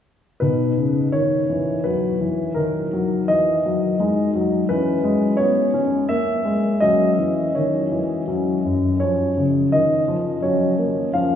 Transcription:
0.40 0.71 B2 soft
0.40 2.52 D#4 soft
0.40 1.09 B4 medium
0.78 1.06 C#3 soft
1.12 1.42 D#3 soft
1.12 1.85 C#5 medium
1.50 1.78 E3 soft
1.84 2.13 F#3 soft
1.84 2.56 B4 soft
2.21 2.49 E3 soft
2.55 2.85 D#3 soft
2.55 3.96 D#4 soft
2.55 3.25 A#4 soft
2.93 3.23 F#3 soft
3.28 3.58 E3 soft
3.28 4.30 D#5 medium
3.66 3.94 F#3 soft
4.00 4.27 G#3 soft
4.00 4.65 D#4 soft
4.36 4.62 F#3 soft
4.69 4.97 E3 soft
4.69 5.72 C#4 soft
4.69 5.38 B4 medium
5.04 5.32 G#3 soft
5.37 5.67 B3 soft
5.37 5.80 C#5 medium
5.74 6.02 C#4 soft
6.09 6.39 A#3 soft
6.09 6.82 E5 medium
6.45 6.75 G#3 soft
6.80 7.11 F#3 soft
6.80 8.24 C#4 soft
6.80 7.54 D#5 medium
7.18 7.48 E3 soft
7.55 7.85 D#3 soft
7.55 7.99 C#5 soft
7.92 8.21 E3 soft
8.28 8.57 F#3 soft
8.28 8.97 C#4 soft
8.65 8.94 F#2 soft
9.00 9.30 F3 soft
9.00 10.40 C#4 soft
9.00 9.44 C#5 medium
9.37 9.66 C#3 soft
9.72 10.02 D#3 soft
9.72 10.15 D#5 medium
10.08 10.37 F3 soft
10.42 10.72 F#3 soft
10.42 11.10 C#4 soft
10.42 11.10 C#5 medium
10.79 11.07 A#3 soft
11.14 11.36 F3 soft
11.14 11.36 C#4 soft
11.14 11.36 F5 medium

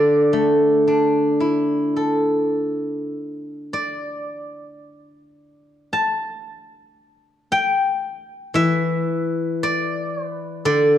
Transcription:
0.00 3.12 D3 medium
0.00 0.34 A4 medium
0.00 0.18 B4 medium
0.00 3.08 D5 medium
0.00 0.98 E5 medium
0.33 2.54 A3 soft
0.88 3.13 D4 soft
1.40 3.72 E4 soft
1.96 4.29 A4 soft
3.73 5.88 D5 medium
5.93 7.47 A5 medium
7.52 9.07 G5 medium
8.54 10.98 E3 medium
8.54 10.27 E5 medium
9.63 10.30 D5 medium
10.30 10.65 B4 medium
10.65 10.98 D3 medium
10.65 10.98 D5 medium

